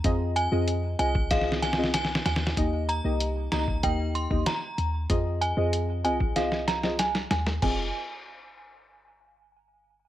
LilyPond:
<<
  \new Staff \with { instrumentName = "Synth bell" } { \time 4/4 \key f \minor \tempo 4 = 95 r8 aes''16 r8. aes''16 r16 f''16 r16 aes''16 r16 aes''16 r16 aes''16 r16 | r8 bes''16 r8. bes''16 r16 g''16 r16 c'''16 r16 bes''8. r16 | r8 aes''16 r8. aes''16 r16 f''16 r16 bes''16 r16 aes''16 r16 aes''16 r16 | aes''8 r2. r8 | }
  \new Staff \with { instrumentName = "Synth stab" } { \time 4/4 \key f \minor <c' f' aes' ees''>8. <c' f' aes' ees''>8. <c' f' aes' ees''>8 <c' f' aes' ees''>8. <c' f' aes' ees''>16 r4 | <bes ees' g' ees''>8. <bes ees' g' ees''>8. <bes ees' g' ees''>8 <bes ees' g' ees''>8. <bes ees' g' ees''>16 r4 | <c' f' aes' ees''>8. <c' f' aes' ees''>8. <c' f' aes' ees''>8 <c' f' aes' ees''>8. <c' f' aes' ees''>16 r4 | <c' f' aes' ees''>8 r2. r8 | }
  \new Staff \with { instrumentName = "808-style bass" } { \clef bass \time 4/4 \key f \minor f,8. f,8. c,2 ees,8 | ees,8. c,8. des,8 ees,8. ees,16 r8 ees,8 | f,8. f,8. c,2 ees,8 | f,,8 r2. r8 | }
  \new DrumStaff \with { instrumentName = "Drums" } \drummode { \time 4/4 <hh bd>8 hh8 hh8 hh16 bd16 \tuplet 3/2 { <hh bd sn>16 sn16 sn16 <hh sn>16 sn16 sn16 <hh sn>16 sn16 sn16 <hh sn>16 sn16 sn16 } | <hh bd>8 hh8 hh8 <hh sn>16 bd16 <hh bd>8 hh16 bd16 <hh sn>8 hh8 | <hh bd>8 hh8 hh8 hh16 bd16 <hh sn>16 sn16 <hh sn>16 sn16 <hh sn>16 sn16 <hh sn>16 sn16 | <cymc bd>4 r4 r4 r4 | }
>>